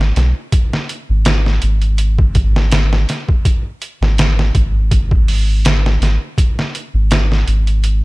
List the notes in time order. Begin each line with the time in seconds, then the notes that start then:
Already playing: G#1
0.01 snare
0.16 B1, snare, closed hi-hat
0.52 kick, closed hi-hat
0.73 snare
0.89 closed hi-hat
1.09 G#1
1.25 snare, closed hi-hat
1.46 snare
1.62 G#1, closed hi-hat
1.82 closed hi-hat
1.98 closed hi-hat
2.19 kick
2.35 kick, closed hi-hat
2.56 snare
2.72 snare, closed hi-hat
2.93 snare
3.09 snare, closed hi-hat
3.29 kick
3.45 kick, closed hi-hat
3.82 closed hi-hat
4.01 G#1, snare
4.18 snare, closed hi-hat
4.39 snare
4.55 G#1, kick, closed hi-hat
4.91 kick, closed hi-hat
5.11 kick
5.28 open hi-hat
5.65 snare, closed hi-hat
5.86 snare
6.01 G#1, snare, closed hi-hat
6.38 kick, closed hi-hat
6.59 snare
6.75 closed hi-hat
6.94 G#1
7.11 snare, closed hi-hat
7.32 snare
7.47 G#1, closed hi-hat
7.67 closed hi-hat
7.84 closed hi-hat